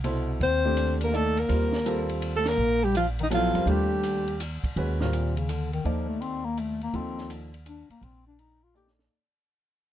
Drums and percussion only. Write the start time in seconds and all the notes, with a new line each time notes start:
0.04 ride
0.41 ride
0.77 hi-hat pedal, ride
1.01 ride
1.14 hi-hat pedal
1.37 ride
1.49 ride
1.73 snare
1.86 hi-hat pedal, ride
2.09 ride
2.22 ride
2.46 snare, ride
2.95 hi-hat pedal, ride
3.19 ride
3.31 hi-hat pedal, ride
3.55 ride
3.67 ride
4.03 hi-hat pedal, ride
4.28 ride
4.40 hi-hat pedal, ride
4.64 kick, ride
4.77 ride
5.00 snare
5.13 hi-hat pedal, ride
5.37 ride
5.49 hi-hat pedal, ride
5.73 ride
5.85 ride
6.22 ride
6.57 hi-hat pedal, ride
6.81 ride
6.94 ride
7.18 snare
7.30 hi-hat pedal, ride
7.54 ride
7.66 hi-hat pedal, ride
7.90 ride
8.03 ride
8.39 ride
8.75 hi-hat pedal
8.87 snare
8.99 snare